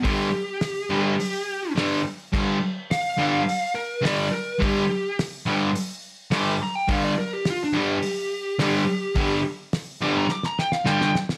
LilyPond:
<<
  \new Staff \with { instrumentName = "Lead electric guitar" } { \time 4/4 \key c \major \tempo 4 = 105 g'2. r4 | r4 f''4. bes'8 d''8 bes'8 | g'4 r2 d'''8 bes''16 g''16 | f''16 d''16 bes'16 g'16 f'16 d'16 g'2~ g'8~ |
g'8 r4 d'''16 bes''16 d'''16 bes''16 g''16 f''16 g''8 r8 | }
  \new Staff \with { instrumentName = "Distorted electric guitar" } { \clef bass \time 4/4 \key c \major <g, d g>8 r4 <g, d g>8 r4 <g, d g>8 r8 | <g, d g>8 r4 <g, d g>8 r4 <g, d g>8 r8 | <g, d g>8 r4 <g, d g>8 r4 <g, d g>8 r8 | <g, d g>8 r4 <g, d g>8 r4 <g, d g>8 r8 |
<g, d g>8 r4 <g, d g>8 r4 <g, d g>8 r8 | }
  \new DrumStaff \with { instrumentName = "Drums" } \drummode { \time 4/4 <hho bd>4 <hho sn>4 hho4 <hho sn>4 | <cymc bd>4 <hho sn>4 hho4 <hho sn>4 | <hho bd>4 <hho sn>4 hho4 <hho sn>4 | <hho bd>4 <hho sn>4 hho4 <hho sn>4 |
<hho bd>4 <hho sn>4 sn16 sn16 sn16 sn16 sn16 sn16 sn16 sn16 | }
>>